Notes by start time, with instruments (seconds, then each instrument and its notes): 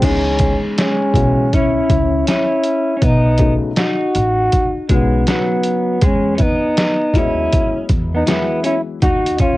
0.00 upright bass C#2, upright piano C#3 E3 G#3 B3 D#4, kick, closed hi-hat, crash
0.04 clean electric guitar G#3, trombone C#4
0.39 kick, closed hi-hat
0.78 clean electric guitar G#3, trombone C#4, snare, closed hi-hat
1.13 upright bass B1, upright piano C#3 E3 G#3 B3 F#4, kick, closed hi-hat
1.53 clean electric guitar C#4, trombone E4, kick, closed hi-hat
1.90 upright bass C#2, kick, closed hi-hat
2.27 clean electric guitar C#4, trombone E4, snare, closed hi-hat
2.63 closed hi-hat
2.97 clean electric guitar C#4, trombone E4
3.02 upright bass B1, clean electric guitar B3, trombone D#4, kick, closed hi-hat
3.38 upright piano C#3 F#3 A3 B3 D#4, kick, closed hi-hat
3.76 clean electric guitar D#4, trombone F#4, snare, closed hi-hat
4.15 upright bass A1, closed hi-hat
4.52 kick, closed hi-hat
4.89 upright bass B1, upright piano C#3 F#3 B3 D#4, clean electric guitar G#3, trombone B3, kick, closed hi-hat
5.27 clean electric guitar F#3, trombone B3, snare, closed hi-hat
5.63 closed hi-hat
6.01 upright bass E2, clean electric guitar G#3, kick, closed hi-hat
6.06 trombone C#4
6.35 clean electric guitar C#4, trombone E4, closed hi-hat
6.40 clean electric guitar B3, trombone D#4, kick
6.77 snare, closed hi-hat
7.14 upright bass D#2, upright piano F#3 G#3 B3 E4 D#5, clean electric guitar C#4, trombone E4, kick, closed hi-hat
7.53 kick, closed hi-hat
7.89 upright bass E2, kick, closed hi-hat
8.15 clean electric guitar B3, trombone D#4
8.26 upright piano E3 F#3 G#3 B3 E4, clean electric guitar B3, trombone E4, snare, closed hi-hat
8.64 clean electric guitar C#4, trombone E4, closed hi-hat
9.02 upright bass D#2, clean electric guitar D#4, trombone F#4, kick, closed hi-hat
9.26 closed hi-hat
9.39 clean electric guitar C#4, trombone F4, kick, closed hi-hat